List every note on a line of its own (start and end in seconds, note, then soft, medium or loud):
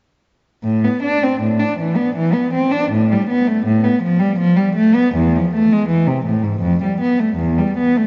0.63 0.84 A2 medium
0.84 1.04 B3 soft
1.03 1.23 D4 soft
1.23 1.42 C4 soft
1.41 1.60 A2 soft
1.60 1.79 D4 soft
1.79 1.98 E3 soft
1.96 2.16 B3 soft
2.16 2.35 E3 medium
2.34 2.54 B3 soft
2.54 2.73 C4 soft
2.72 2.91 D4 medium
2.91 3.10 A2 medium
3.12 3.29 G3 medium
3.30 3.47 B3 soft
3.48 3.66 A3 medium
3.66 3.83 A2 medium
3.84 4.01 B3 soft
4.02 4.19 F3 medium
4.19 4.37 G3 medium
4.39 4.56 F3 medium
4.57 4.75 G3 medium
4.75 4.94 A3 medium
4.95 5.15 B3 medium
5.15 5.34 E2 medium
5.36 5.54 F3 medium
5.54 5.71 A3 medium
5.72 5.89 G#3 medium
5.89 6.06 E3 medium
6.07 6.25 C3 medium
6.26 6.43 A2 medium
6.43 6.62 G#2 soft
6.61 6.80 F2 medium
6.83 7.01 G3 soft
7.01 7.19 B3 soft
7.20 7.39 A3 soft
7.36 7.57 E2 medium
7.58 7.78 G3 soft
7.78 7.97 B3 soft
7.97 8.07 A3 soft